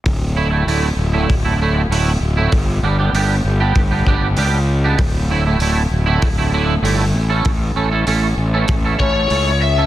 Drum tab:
HH |o-o-o-o-|o-o-o-o-|o-o-o-o-|o-o-o-o-|
BD |o---o---|o---oo--|o---o---|o---oo--|